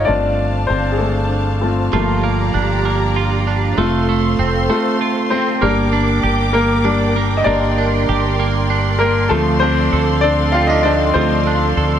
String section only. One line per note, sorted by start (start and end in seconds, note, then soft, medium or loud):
0.00 5.58 F5 medium
0.08 1.91 D4 medium
0.08 1.91 C5 medium
0.08 1.91 A5 medium
1.94 3.76 G4 medium
1.94 3.76 D5 medium
1.94 3.76 A#5 medium
3.77 5.60 A4 medium
3.77 5.60 C5 medium
3.77 5.60 C6 medium
5.62 9.27 A#4 medium
5.62 11.99 D5 medium
5.62 9.27 G5 medium
5.62 7.45 D6 medium
7.46 11.99 C6 medium
9.31 11.99 A4 medium
9.31 11.99 F5 medium